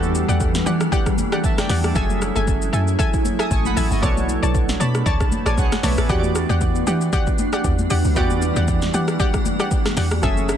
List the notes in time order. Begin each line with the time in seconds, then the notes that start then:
Already playing: E2 E3 G3 B3 D4 E4 F#4 G4 A4 D5 F#5
0.03 high conga, shaker
0.15 shaker
0.28 E2 G4 D5 F#5, high conga, shaker
0.40 kick, shaker
0.55 snare, shaker
0.66 E3 G4 D5 F#5, high conga, shaker
0.81 cross-stick, shaker
0.92 G4 D5 F#5, kick, low conga, shaker
1.06 kick, cross-stick, shaker
1.18 high conga, shaker
1.32 G4 D5 F#5, cross-stick, shaker
1.44 E5 A5, kick, shaker
1.58 D5 G5, cross-stick, snare, high conga, shaker
1.69 E2 G4 D5 F#5, snare, open hi-hat, low conga, shaker
1.84 A4 D5, cross-stick, high conga, shaker
1.94 F#1 F#3 A3 C#4 G#4 A4 E5 G#5, kick, low conga, shaker
1.99 E5
2.10 high conga, shaker
2.22 cross-stick, shaker
2.36 F#1 A4 E5 G#5, high conga, shaker
2.47 kick, shaker
2.62 shaker
2.73 F#2 A4 E5 G#5, high conga, shaker
2.88 shaker
2.99 A4 E5 G#5, kick, low conga, shaker
3.14 kick, shaker
3.25 high conga, shaker
3.39 A4 E5 G#5 A5 D#6, cross-stick, shaker
3.51 A1 G#5 C#6, kick, shaker
3.65 F#5 B5, high conga, shaker
3.76 A1 A4 E5 G#5 A5, open hi-hat, low conga, shaker
3.91 G1 D#5 G#5, high conga, shaker
4.01 B1 B2 A3 B3 D4 A4 C#5 D5 A5, kick, low conga, shaker
4.06 C#5
4.17 high conga, shaker
4.29 high conga, shaker
4.42 B1 C#5 D5 A5, high conga, shaker
4.55 kick, shaker
4.69 snare, shaker
4.80 B2 C#5 D5 A5 B5, high conga, shaker
4.95 cross-stick, shaker
5.06 D2 C#5 D5 A5, kick, low conga, shaker
5.20 B1, kick, cross-stick, shaker
5.32 high conga, shaker
5.46 A1 C#5 D5 G#5 A5, cross-stick, shaker
5.58 B1 G#4 C#5 F#5, kick, shaker
5.72 cross-stick, snare, high conga, shaker
5.83 B1 B4 C#5 D5 E5 A5, snare, open hi-hat, low conga, shaker
5.98 A1 A4 D5, cross-stick, high conga, shaker
6.08 E2 E3 G3 B3 F#4 G4 D5 F#5, kick, low conga, shaker
6.13 C#5
6.19 D5
6.23 high conga, shaker
6.35 cross-stick, shaker
6.49 E2 G4 D5 F#5, high conga, shaker
6.61 kick, shaker
6.75 shaker
6.87 E3 G4 D5 F#5, high conga, shaker
7.01 shaker
7.13 G4 D5 F#5, kick, low conga, shaker
7.27 kick, shaker
7.38 high conga, shaker
7.53 G4 D5 F#5, cross-stick, shaker
7.64 E2, kick, shaker
7.79 high conga, shaker
7.90 E2 G4 D5 F#5, open hi-hat, low conga, shaker
8.04 D2, high conga, shaker
8.15 E2 E3 B3 F#4 G4 D5 F#5, kick, low conga, shaker
8.20 D5
8.30 high conga, shaker
8.42 shaker
8.56 E2 G4 D5 F#5, high conga, shaker
8.68 kick, shaker
8.82 snare, shaker
8.94 E3 G4 D5 F#5, high conga, shaker
9.08 cross-stick, shaker
9.20 G4 D5 F#5, kick, low conga, shaker
9.34 kick, cross-stick, shaker
9.46 high conga, shaker
9.60 G4 D5 F#5, cross-stick, shaker
9.71 kick, shaker
9.85 cross-stick, snare, high conga, shaker
9.97 E2 G4 D5 F#5, snare, open hi-hat, low conga, shaker
10.11 cross-stick, high conga, shaker
10.22 F#1 F#3 C#4 G#4 A4 E5, kick, low conga, shaker
10.26 E5
10.37 high conga, shaker
10.49 cross-stick, shaker